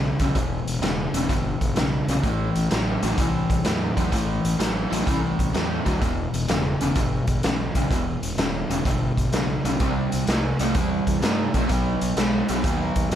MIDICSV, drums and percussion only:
0, 0, Header, 1, 2, 480
1, 0, Start_track
1, 0, Key_signature, 1, "minor"
1, 0, Tempo, 472813
1, 358, Time_signature, 4, 2, 24, 8
1, 13352, End_track
2, 0, Start_track
2, 0, Title_t, "Drums"
2, 198, Note_on_c, 9, 42, 64
2, 201, Note_on_c, 9, 36, 79
2, 299, Note_off_c, 9, 42, 0
2, 303, Note_off_c, 9, 36, 0
2, 358, Note_on_c, 9, 36, 99
2, 358, Note_on_c, 9, 42, 67
2, 459, Note_off_c, 9, 36, 0
2, 460, Note_off_c, 9, 42, 0
2, 685, Note_on_c, 9, 42, 58
2, 787, Note_off_c, 9, 42, 0
2, 837, Note_on_c, 9, 42, 78
2, 851, Note_on_c, 9, 38, 105
2, 939, Note_off_c, 9, 42, 0
2, 952, Note_off_c, 9, 38, 0
2, 1158, Note_on_c, 9, 42, 63
2, 1260, Note_off_c, 9, 42, 0
2, 1313, Note_on_c, 9, 36, 96
2, 1315, Note_on_c, 9, 42, 75
2, 1415, Note_off_c, 9, 36, 0
2, 1416, Note_off_c, 9, 42, 0
2, 1637, Note_on_c, 9, 36, 79
2, 1638, Note_on_c, 9, 42, 49
2, 1739, Note_off_c, 9, 36, 0
2, 1740, Note_off_c, 9, 42, 0
2, 1786, Note_on_c, 9, 42, 70
2, 1799, Note_on_c, 9, 38, 102
2, 1888, Note_off_c, 9, 42, 0
2, 1901, Note_off_c, 9, 38, 0
2, 2116, Note_on_c, 9, 42, 61
2, 2217, Note_off_c, 9, 42, 0
2, 2269, Note_on_c, 9, 42, 61
2, 2270, Note_on_c, 9, 36, 100
2, 2370, Note_off_c, 9, 42, 0
2, 2371, Note_off_c, 9, 36, 0
2, 2593, Note_on_c, 9, 42, 57
2, 2695, Note_off_c, 9, 42, 0
2, 2749, Note_on_c, 9, 42, 71
2, 2762, Note_on_c, 9, 38, 95
2, 2850, Note_off_c, 9, 42, 0
2, 2863, Note_off_c, 9, 38, 0
2, 3072, Note_on_c, 9, 42, 63
2, 3174, Note_off_c, 9, 42, 0
2, 3226, Note_on_c, 9, 42, 83
2, 3227, Note_on_c, 9, 36, 95
2, 3327, Note_off_c, 9, 42, 0
2, 3328, Note_off_c, 9, 36, 0
2, 3552, Note_on_c, 9, 36, 84
2, 3555, Note_on_c, 9, 42, 55
2, 3653, Note_off_c, 9, 36, 0
2, 3656, Note_off_c, 9, 42, 0
2, 3701, Note_on_c, 9, 42, 85
2, 3714, Note_on_c, 9, 38, 101
2, 3802, Note_off_c, 9, 42, 0
2, 3816, Note_off_c, 9, 38, 0
2, 4030, Note_on_c, 9, 36, 78
2, 4033, Note_on_c, 9, 42, 67
2, 4132, Note_off_c, 9, 36, 0
2, 4135, Note_off_c, 9, 42, 0
2, 4185, Note_on_c, 9, 36, 89
2, 4186, Note_on_c, 9, 42, 80
2, 4287, Note_off_c, 9, 36, 0
2, 4288, Note_off_c, 9, 42, 0
2, 4514, Note_on_c, 9, 42, 59
2, 4616, Note_off_c, 9, 42, 0
2, 4671, Note_on_c, 9, 42, 84
2, 4684, Note_on_c, 9, 38, 93
2, 4773, Note_off_c, 9, 42, 0
2, 4786, Note_off_c, 9, 38, 0
2, 5000, Note_on_c, 9, 42, 66
2, 5101, Note_off_c, 9, 42, 0
2, 5148, Note_on_c, 9, 36, 95
2, 5151, Note_on_c, 9, 42, 77
2, 5250, Note_off_c, 9, 36, 0
2, 5252, Note_off_c, 9, 42, 0
2, 5473, Note_on_c, 9, 36, 76
2, 5479, Note_on_c, 9, 42, 61
2, 5575, Note_off_c, 9, 36, 0
2, 5580, Note_off_c, 9, 42, 0
2, 5628, Note_on_c, 9, 42, 69
2, 5641, Note_on_c, 9, 38, 101
2, 5729, Note_off_c, 9, 42, 0
2, 5742, Note_off_c, 9, 38, 0
2, 5949, Note_on_c, 9, 42, 57
2, 5950, Note_on_c, 9, 36, 69
2, 6051, Note_off_c, 9, 42, 0
2, 6052, Note_off_c, 9, 36, 0
2, 6108, Note_on_c, 9, 36, 92
2, 6109, Note_on_c, 9, 42, 66
2, 6210, Note_off_c, 9, 36, 0
2, 6210, Note_off_c, 9, 42, 0
2, 6434, Note_on_c, 9, 42, 54
2, 6535, Note_off_c, 9, 42, 0
2, 6582, Note_on_c, 9, 42, 75
2, 6595, Note_on_c, 9, 38, 94
2, 6684, Note_off_c, 9, 42, 0
2, 6697, Note_off_c, 9, 38, 0
2, 6910, Note_on_c, 9, 42, 53
2, 7011, Note_off_c, 9, 42, 0
2, 7060, Note_on_c, 9, 42, 76
2, 7065, Note_on_c, 9, 36, 100
2, 7162, Note_off_c, 9, 42, 0
2, 7166, Note_off_c, 9, 36, 0
2, 7385, Note_on_c, 9, 42, 61
2, 7389, Note_on_c, 9, 36, 86
2, 7486, Note_off_c, 9, 42, 0
2, 7490, Note_off_c, 9, 36, 0
2, 7543, Note_on_c, 9, 42, 81
2, 7556, Note_on_c, 9, 38, 108
2, 7645, Note_off_c, 9, 42, 0
2, 7658, Note_off_c, 9, 38, 0
2, 7868, Note_on_c, 9, 42, 64
2, 7870, Note_on_c, 9, 36, 78
2, 7970, Note_off_c, 9, 42, 0
2, 7972, Note_off_c, 9, 36, 0
2, 8026, Note_on_c, 9, 36, 97
2, 8031, Note_on_c, 9, 42, 76
2, 8128, Note_off_c, 9, 36, 0
2, 8132, Note_off_c, 9, 42, 0
2, 8353, Note_on_c, 9, 42, 66
2, 8455, Note_off_c, 9, 42, 0
2, 8507, Note_on_c, 9, 42, 76
2, 8520, Note_on_c, 9, 38, 110
2, 8608, Note_off_c, 9, 42, 0
2, 8621, Note_off_c, 9, 38, 0
2, 8837, Note_on_c, 9, 42, 59
2, 8939, Note_off_c, 9, 42, 0
2, 8988, Note_on_c, 9, 36, 102
2, 8989, Note_on_c, 9, 42, 77
2, 9090, Note_off_c, 9, 36, 0
2, 9091, Note_off_c, 9, 42, 0
2, 9314, Note_on_c, 9, 36, 77
2, 9319, Note_on_c, 9, 42, 53
2, 9415, Note_off_c, 9, 36, 0
2, 9420, Note_off_c, 9, 42, 0
2, 9466, Note_on_c, 9, 42, 81
2, 9479, Note_on_c, 9, 38, 93
2, 9568, Note_off_c, 9, 42, 0
2, 9581, Note_off_c, 9, 38, 0
2, 9798, Note_on_c, 9, 42, 59
2, 9899, Note_off_c, 9, 42, 0
2, 9947, Note_on_c, 9, 42, 64
2, 9951, Note_on_c, 9, 36, 98
2, 10048, Note_off_c, 9, 42, 0
2, 10053, Note_off_c, 9, 36, 0
2, 10274, Note_on_c, 9, 42, 59
2, 10376, Note_off_c, 9, 42, 0
2, 10429, Note_on_c, 9, 42, 69
2, 10442, Note_on_c, 9, 38, 91
2, 10530, Note_off_c, 9, 42, 0
2, 10543, Note_off_c, 9, 38, 0
2, 10753, Note_on_c, 9, 42, 57
2, 10854, Note_off_c, 9, 42, 0
2, 10908, Note_on_c, 9, 42, 75
2, 10914, Note_on_c, 9, 36, 109
2, 11009, Note_off_c, 9, 42, 0
2, 11015, Note_off_c, 9, 36, 0
2, 11238, Note_on_c, 9, 36, 71
2, 11239, Note_on_c, 9, 42, 59
2, 11340, Note_off_c, 9, 36, 0
2, 11340, Note_off_c, 9, 42, 0
2, 11393, Note_on_c, 9, 42, 75
2, 11407, Note_on_c, 9, 38, 107
2, 11495, Note_off_c, 9, 42, 0
2, 11508, Note_off_c, 9, 38, 0
2, 11715, Note_on_c, 9, 42, 58
2, 11718, Note_on_c, 9, 36, 83
2, 11817, Note_off_c, 9, 42, 0
2, 11820, Note_off_c, 9, 36, 0
2, 11870, Note_on_c, 9, 42, 70
2, 11876, Note_on_c, 9, 36, 88
2, 11971, Note_off_c, 9, 42, 0
2, 11977, Note_off_c, 9, 36, 0
2, 12196, Note_on_c, 9, 42, 62
2, 12298, Note_off_c, 9, 42, 0
2, 12352, Note_on_c, 9, 42, 81
2, 12365, Note_on_c, 9, 38, 94
2, 12453, Note_off_c, 9, 42, 0
2, 12467, Note_off_c, 9, 38, 0
2, 12674, Note_on_c, 9, 42, 63
2, 12776, Note_off_c, 9, 42, 0
2, 12831, Note_on_c, 9, 42, 84
2, 12833, Note_on_c, 9, 36, 108
2, 12933, Note_off_c, 9, 42, 0
2, 12935, Note_off_c, 9, 36, 0
2, 13153, Note_on_c, 9, 42, 58
2, 13157, Note_on_c, 9, 36, 80
2, 13255, Note_off_c, 9, 42, 0
2, 13259, Note_off_c, 9, 36, 0
2, 13313, Note_on_c, 9, 42, 81
2, 13352, Note_off_c, 9, 42, 0
2, 13352, End_track
0, 0, End_of_file